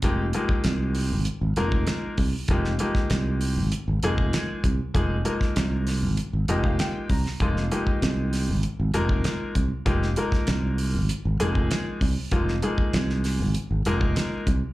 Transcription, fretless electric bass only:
\new Staff \with { instrumentName = "Fretless electric bass" } { \clef bass \time 4/4 \key f \minor \tempo 4 = 98 f,,8 r8 c,8. aes,,16 r16 aes,,16 f,,8 r8 c,16 r16 | f,,8 r8 c,8. aes,,16 r16 aes,,16 f,,8 r8 c,16 r16 | f,,8 r8 c,8. aes,,16 r16 aes,,16 f,,8 r8 c,16 r16 | f,,8 r8 c,8. aes,,16 r16 aes,,16 f,,8 r8 c,16 r16 |
f,,8 r8 c,8. aes,,16 r16 aes,,16 f,,8 r8 c,16 r16 | f,,8 r8 c,8. aes,,16 r16 aes,,16 f,,8 r8 c,16 r16 | }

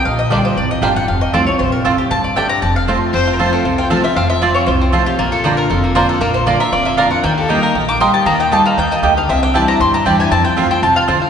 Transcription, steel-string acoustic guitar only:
\new Staff \with { instrumentName = "Steel-string acoustic guitar" } { \time 4/4 \key f \mixolydian \tempo 4 = 234 << { r4 <d g d' f'>4 r4 <d g d' f'>8 <d' f'>8 | r4 <f a c' f'>8 <c' f'>8 r2 | r4 <d g d' g'>4 r4 <f a c' f'>4 | \key f \major r4 <f a c' f'>4 r4 <f a c' f'>8 <c' f'>8 |
r4 <f a c' f'>4 r4 <f a c' f'>4 | r4 <d bes d' f'>4 r4 <d bes d' f'>4 | r4 <d bes d' f'>8 <d' f'>8 r4 <d bes d' f'>8 <d' f'>8 | r4 <g bes ees' g'>4 r4 <g bes ees' g'>4 |
r4 <g bes ees' g'>4 r2 | r4 <e g d' e'>4 r4 <e g d' e'>4 | r4 <f a c' f'>4 r2 | } \\ { bes,2 f,2 | f,2 c4 f,4 | g,2 f,2 | f,2 c2 |
f,2 c2 | bes,2 f,2 | bes,2 f,2 | ees2 bes,2 |
ees2 ees4 d4 | c2 g,2 | f,2 c4 d4 | } >> }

